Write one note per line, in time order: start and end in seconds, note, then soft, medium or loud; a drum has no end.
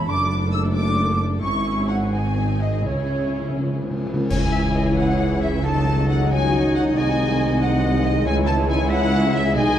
0.07 1.40 F#1 medium
0.07 1.40 F#2 medium
0.07 1.39 A3 medium
0.07 1.39 D4 medium
0.07 1.39 A4 medium
0.07 0.33 D6 loud
0.07 0.52 D6 medium
0.52 0.60 E6 loud
0.52 0.59 E6 medium
0.75 1.19 D6 medium
0.75 1.20 D6 loud
1.42 2.86 G#1 medium
1.42 2.82 G#1 medium
1.42 2.82 G#2 medium
1.42 2.09 C#4 medium
1.42 2.09 E4 medium
1.42 4.05 G#4 medium
1.42 1.85 C#6 medium
1.42 1.86 C#6 loud
1.89 1.97 F#5 medium
1.89 2.13 F#5 medium
2.13 2.81 C4 medium
2.13 2.81 D#4 medium
2.13 2.60 G#5 medium
2.13 2.61 G#5 medium
2.61 2.85 D#5 medium
2.84 4.09 C#2 medium
2.84 2.92 C#3 soft
2.84 4.09 C#3 medium
2.84 4.06 C#4 medium
2.84 4.06 E4 medium
2.84 3.57 C#5 medium
2.84 3.58 C#5 medium
2.93 3.00 C#3 soft
3.01 3.08 C#3 soft
3.10 3.17 C#3 soft
3.26 3.33 C#3 soft
3.34 3.40 C#3 soft
3.42 3.48 C#3 medium
3.49 3.56 C#3 medium
3.57 3.65 C#3 medium
3.66 3.73 C#3 medium
3.74 3.81 C#3 medium
3.82 3.89 C#3 medium
3.91 3.97 C#3 medium
3.99 4.05 C#3 medium
4.06 4.13 C#3 medium
4.14 4.21 C#3 loud
4.22 4.28 C#3 medium
4.28 6.93 C#2 medium
4.28 5.61 C#3 medium
4.28 6.93 C#3 medium
4.28 5.61 E3 medium
4.28 5.60 G#3 medium
4.28 5.60 E4 medium
4.28 5.61 E4 medium
4.28 5.61 G#4 medium
4.28 5.61 C#5 medium
4.28 4.40 C#5 medium
4.28 4.94 G#5 medium
4.28 4.94 G#5 loud
4.28 concert bass drum medium
4.28 crash medium
4.52 4.63 E5 medium
4.75 4.85 D#5 medium
4.97 5.66 C#5 medium
4.97 5.42 F#5 medium
5.42 5.48 E5 medium
5.42 5.65 E5 medium
5.63 8.91 D#3 medium
5.63 6.93 F#3 medium
5.63 8.26 F#3 medium
5.63 6.94 F#3 medium
5.63 8.22 D#4 medium
5.63 8.22 F#4 medium
5.63 6.31 A4 medium
5.63 8.22 D#5 medium
5.63 6.07 A5 medium
5.63 6.09 A5 loud
6.09 6.30 F#5 medium
6.09 6.31 F#5 medium
6.31 6.99 C#5 medium
6.31 6.75 G#5 medium
6.31 6.74 G#5 loud
6.75 6.83 F#5 medium
6.75 6.81 F#5 medium
6.95 8.23 C2 medium
6.95 8.24 C2 medium
6.95 8.24 C3 loud
6.95 9.56 G#3 medium
6.95 9.53 G#3 medium
6.95 7.61 D#5 loud
6.95 7.60 G#5 loud
6.95 7.61 G#5 loud
7.61 8.25 D#5 loud
7.61 8.04 F#5 medium
7.61 8.05 F#5 loud
8.05 8.26 D#5 loud
8.25 9.58 C#2 loud
8.25 9.54 C#2 loud
8.25 9.54 C#3 loud
8.25 9.56 E3 medium
8.25 9.54 E4 medium
8.25 9.53 E4 loud
8.25 9.79 G#4 medium
8.25 8.91 C#5 medium
8.25 9.52 C#5 medium
8.25 8.48 G#5 loud
8.25 8.35 G#5 loud
8.47 8.55 A5 loud
8.47 8.69 A5 loud
8.69 8.91 G#5 loud
8.90 9.56 C#3 medium
8.90 9.55 E5 loud
8.90 9.34 F#5 loud
9.34 9.56 E5 loud
9.34 9.57 E5 loud
9.55 9.79 B1 loud
9.55 9.79 B2 loud
9.55 9.79 D#3 medium
9.55 9.79 G#3 loud
9.55 9.79 G#3 medium
9.55 9.79 D#4 loud
9.55 9.79 D#4 medium
9.55 9.79 D#5 loud
9.55 9.79 G#5 loud